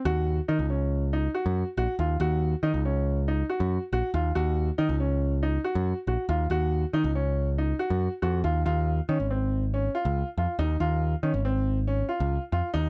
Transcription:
<<
  \new Staff \with { instrumentName = "Grand piano" } { \time 5/4 \key ees \dorian \tempo 4 = 140 ges'4 ees'8 des'4 ees'8 ges'4 ges'8 f'8 | ges'4 ees'8 des'4 ees'8 ges'4 ges'8 f'8 | ges'4 ees'8 des'4 ees'8 ges'4 ges'8 f'8 | ges'4 ees'8 des'4 ees'8 ges'4 ges'8 f'8 |
f'4 des'8 c'4 des'8 f'4 f'8 ees'8 | f'4 des'8 c'4 des'8 f'4 f'8 ees'8 | }
  \new Staff \with { instrumentName = "Picked electric bass" } { \clef bass \time 5/4 \key ees \dorian ees,4 ees16 des,2 ges,8 r16 bes,,16 r16 ees,8 | ees,4 ees16 des,2 ges,8 r16 bes,,16 r16 ees,8 | ees,4 ees16 des,2 ges,8 r16 bes,,16 r16 ees,8 | ees,4 ees16 des,2 ges,8 r16 f,8 ees,8 |
ees,4 ees16 aes,,2 des,8 r16 f,16 r16 ees,8 | ees,4 ees16 aes,,2 des,8 r16 f,16 r16 ees,8 | }
>>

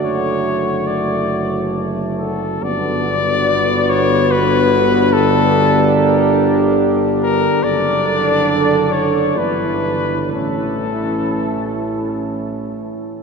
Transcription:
<<
  \new Staff \with { instrumentName = "Cornet" } { \time 3/4 \key d \major \tempo 4 = 70 cis''4 d''4 r8 a'8 | \key g \lydian d''4. cis''8 b'4 | a'4 bes'4 r8 bes'8 | d''4. cis''8 b'4 |
a'2 r4 | }
  \new Staff \with { instrumentName = "French horn section" } { \time 3/4 \key d \major fis'2. | \key g \lydian fis'2. | g'2. | a'2 e'4 |
e'2~ e'8 r8 | }
  \new Staff \with { instrumentName = "Trombone section" } { \time 3/4 \key d \major a2. | \key g \lydian b2. | d'2. | d'2 d'4 |
cis'2~ cis'8 r8 | }
  \new Staff \with { instrumentName = "Trombone" } { \clef bass \time 3/4 \key d \major d2~ d8 r8 | \key g \lydian d2.~ | d2. | d2 e4 |
e2~ e8 r8 | }
  \new Staff \with { instrumentName = "Tuba" } { \clef bass \time 3/4 \key d \major fis,,2. | \key g \lydian g,,2.~ | g,,2. | fis,,2 g,,4 |
a,,2~ a,,8 r8 | }
>>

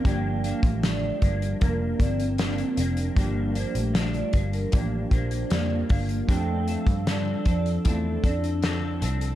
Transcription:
<<
  \new Staff \with { instrumentName = "Vibraphone" } { \time 4/4 \key g \dorian \tempo 4 = 77 g''8 f''8 d''8 d''16 r16 bes'8 d''16 r4 r16 | r8 c''16 r8 d''16 r16 bes'16 r8 c''8 d''16 r16 f''16 r16 | g''8 f''8 d''8 d''16 r16 a'8 d''16 r4 r16 | }
  \new Staff \with { instrumentName = "Synth keys" } { \time 4/4 \key g \dorian <f g d' g'>4~ <f g d' g'>16 r8. <f bes d' bes'>4~ <f bes d' bes'>16 r8. | <f g d' g'>4~ <f g d' g'>16 r8. <f bes d' g'>4~ <f bes d' g'>16 r8. | <f c' d' g' a'>4~ <f c' d' g' a'>16 r8. <c' d' e' f'>4~ <c' d' e' f'>16 r8. | }
  \new Staff \with { instrumentName = "Clean electric guitar" } { \time 4/4 \key g \dorian <g, f bes d'>8 <f bes d'>8 <g, f d'>8 <f bes d'>8 <g, f bes d'>8 <f bes d'>8 <g, f bes d'>8 <f bes d'>8 | <g, f bes d'>8 <f bes d'>8 <g, f d'>8 <f bes d'>8 <g, f bes d'>8 <f bes d'>8 <g, f bes d'>8 <f bes d'>8 | <f c' d' a'>8 <c' d' a'>8 <f c' d' a'>8 <c' d' a'>8 <c' d' a'>8 <c' d' a'>8 <f c' d' a'>8 <c' d' a'>8 | }
  \new Staff \with { instrumentName = "Soft synth lead" } { \time 4/4 \key g \dorian bes8. a8. g8 bes8 c'4. | bes8. a8. g8 bes8 bes4. | a8. g8. f8 a8 d'4 r8 | }
  \new Staff \with { instrumentName = "Picked electric bass" } { \clef bass \time 4/4 \key g \dorian g,,8. a,,8. g,,8 f,,8 g,,4 f,,8 | g,,8. bes,,8. g,,8 a,,8 bes,,8 f,8 g,,8 | f,8. g,8. f,8 e,8 f,4 c,8 | }
  \new DrumStaff \with { instrumentName = "Drums" } \drummode { \time 4/4 <hh bd>8 hh16 <hh bd>16 <hh sn>8 <hh bd>16 hh16 <hh bd>8 <hh bd>16 hh16 <hh sn>16 hh16 hh16 hh16 | <hh bd>8 hh16 hh16 <hh sn>16 hh16 <hh bd>16 hh16 <hh bd>8 <hh bd>16 hh16 <hh sn>8 <hho bd>16 hh16 | <hh bd>8 hh16 <hh bd>16 <hh sn>8 <hh bd>16 hh16 <hh bd>8 <hh bd>16 hh16 <hh sn>8 hh16 hh16 | }
>>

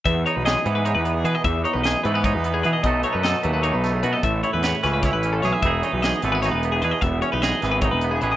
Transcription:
<<
  \new Staff \with { instrumentName = "Clean electric guitar" } { \time 7/8 \key e \major \tempo 4 = 151 e''8 cis''16 b'16 dis''8 b'16 b'16 cis''16 b'8 gis'16 b'16 dis''16 | e''8 cis''16 b'16 dis''8 b'16 b'16 cis''16 b'8 gis'16 b'16 dis''16 | dis''8 cis''16 b'16 dis''8 b'16 b'16 cis''16 b'8 gis'16 b'16 dis''16 | e''8 cis''16 b'16 cis''8 b'16 b'16 cis''16 b'8 a'16 cis''16 e''16 |
e''8 cis''16 b'16 dis''8 b'16 b'16 cis''16 b'8 gis'16 b'16 dis''16 | e''8 cis''16 b'16 dis''8 b'16 b'16 cis''16 b'8 gis'16 b'16 dis''16 | }
  \new Staff \with { instrumentName = "Clean electric guitar" } { \time 7/8 \key e \major << { r8 dis'8 gis'8 b8 dis'8 b8 gis'8 | r8 dis'8 gis'8 a16 b16 dis'8 b8 gis'8 | <fis a dis' a'>8 dis'8 a'8 a8 dis'8 a8 fis'16 a'16 | r8 e'8 b'8 cis'8 e'8 cis'8 gis'8 |
<e b dis' gis'>8 dis'8 gis'8 a16 b16 dis'8 b8 gis'8 | r8 cis'16 dis'16 gis'8 b8 dis'8 b8 gis'8 | } \\ { e,4. e4. b,8 | e,4. e4. b,8 | b,4. fis4. fis,8 | a,4. e4. e8 |
e,4. e4. b,8 | e,4. e4. b,8 | } >> }
  \new Staff \with { instrumentName = "Picked electric bass" } { \clef bass \time 7/8 \key e \major e,8 r16 b,,8 r16 gis,8. e,8. e16 r16 | e,8 r16 b,,8 r16 gis,8. e,8. e16 r16 | b,,8 r16 fis,8 r16 dis,8. b,,8. b,16 r16 | a,,8 r16 e,8 r16 cis,8. a,,8. b,,16 r16 |
e,,8 r16 b,,8 r16 gis,,8. e,,8. e,16 r16 | e,,8 r16 b,,8 r16 gis,,8. e,,8. a,,16 r16 | }
  \new DrumStaff \with { instrumentName = "Drums" } \drummode { \time 7/8 <hh bd>8 hh8 <hh sn>8 hh8 hh8 hh8 hh8 | <hh bd>8 hh8 <hh sn>8 hh8 <hh bd>8 hh8 hh8 | <hh bd>8 hh8 <hh sn>8 hh8 hh8 <hh sn>8 hh8 | <hh bd>8 hh8 <hh sn>8 <hh sn>8 <hh bd sn>8 hh8 <hh sn>8 |
<hh bd>8 hh8 <hh sn>8 hh8 <hh sn>8 hh8 hh8 | <hh bd>8 hh8 <hh sn>8 <hh sn>8 <hh bd>8 hh8 hh8 | }
>>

